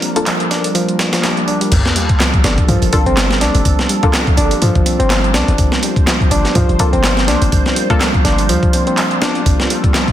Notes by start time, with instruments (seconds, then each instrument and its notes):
Already playing: reed electric piano F3 G3 C4 D4, analog synth pad G3 A#3 F4 A#4
0.02 reed electric piano G3, closed hi-hat
0.16 synth stab A#3 D4 F4 A4, closed hi-hat
0.26 reed electric piano F3, clap, closed hi-hat
0.40 closed hi-hat
0.51 reed electric piano D4, snare, closed hi-hat
0.64 closed hi-hat
0.75 reed electric piano F3, closed hi-hat, swell
0.89 closed hi-hat
0.99 reed electric piano A#3, snare, closed hi-hat
1.13 reed electric piano F3, snare, closed hi-hat
1.23 reed electric piano D4, snare, clap, closed hi-hat
1.37 reed electric piano A#3, closed hi-hat
1.48 reed electric piano D4, closed hi-hat
1.61 reed electric piano G3, closed hi-hat
1.71 808-style bass G1, analog synth pad G3 A#3 F4 A4, kick, closed hi-hat, crash, sub drop
1.85 snare, closed hi-hat
1.96 reed electric piano G3, closed hi-hat
2.09 kick, closed hi-hat
2.20 reed electric piano F3, snare, clap, closed hi-hat
2.34 kick, closed hi-hat
2.44 808-style bass G1, reed electric piano D4, snare, closed hi-hat
2.58 kick, closed hi-hat
2.68 808-style bass G2, reed electric piano F3, closed hi-hat
2.82 808-style bass G1, closed hi-hat
2.93 synth stab A#3 D4 F4 A4, reed electric piano C4, kick, closed hi-hat
3.06 808-style bass G1, reed electric piano C4, closed hi-hat
3.17 snare, clap, closed hi-hat
3.31 snare, closed hi-hat
3.41 808-style bass C2, reed electric piano D4, snare, closed hi-hat
3.55 808-style bass G1, closed hi-hat
3.65 808-style bass G1, kick, closed hi-hat
3.79 snare, closed hi-hat
3.89 reed electric piano G3, closed hi-hat
4.03 synth stab A#3 D4 F4 A4, kick, closed hi-hat
4.13 reed electric piano F3, snare, clap, closed hi-hat
4.27 kick, closed hi-hat
4.37 808-style bass G1, reed electric piano D4, closed hi-hat
4.51 closed hi-hat
4.62 808-style bass G2, reed electric piano F3, closed hi-hat
4.75 808-style bass G1, kick, closed hi-hat
4.86 reed electric piano C4, closed hi-hat
4.99 808-style bass G1, reed electric piano C4, closed hi-hat
5.10 snare, clap, closed hi-hat
5.24 closed hi-hat
5.34 808-style bass C2, reed electric piano D4, snare, closed hi-hat
5.48 808-style bass G1, closed hi-hat
5.58 808-style bass G1, analog synth pad C5, kick, closed hi-hat
5.72 snare, closed hi-hat
5.83 reed electric piano G3, closed hi-hat
5.96 kick, closed hi-hat
6.07 reed electric piano F3, snare, clap, closed hi-hat
6.21 kick, closed hi-hat
6.31 808-style bass G1, reed electric piano D4, closed hi-hat
6.45 snare, closed hi-hat
6.55 808-style bass G2, reed electric piano F3, kick, closed hi-hat
6.69 808-style bass G1, closed hi-hat
6.79 synth stab A#3 D4 F4 A4, reed electric piano C4, kick, closed hi-hat
6.93 808-style bass G1, reed electric piano C4, closed hi-hat
7.04 snare, clap, closed hi-hat
7.17 snare, closed hi-hat
7.28 808-style bass C2, reed electric piano D4, snare, closed hi-hat
7.42 808-style bass G1, closed hi-hat
7.52 808-style bass G1, kick, closed hi-hat
7.66 snare, closed hi-hat
7.76 reed electric piano G3, closed hi-hat
7.90 synth stab A#3 D4 F4 A4, kick, closed hi-hat
8.01 reed electric piano F3, snare, clap, closed hi-hat
8.14 kick, closed hi-hat
8.25 808-style bass G1, reed electric piano D4, snare, closed hi-hat
8.38 closed hi-hat
8.49 808-style bass E2, reed electric piano F3, closed hi-hat
8.63 kick, closed hi-hat
8.73 reed electric piano C4, closed hi-hat
8.87 reed electric piano C4, closed hi-hat
8.97 clap, closed hi-hat
9.11 closed hi-hat
9.22 synth stab A#3 D4 F4 C5, reed electric piano D4, snare, closed hi-hat
9.35 closed hi-hat
9.46 808-style bass G1, analog synth pad A4, kick, closed hi-hat
9.60 snare, closed hi-hat
9.70 reed electric piano G3, closed hi-hat
9.84 kick, closed hi-hat
9.94 reed electric piano F3, snare, clap, closed hi-hat
10.08 kick, closed hi-hat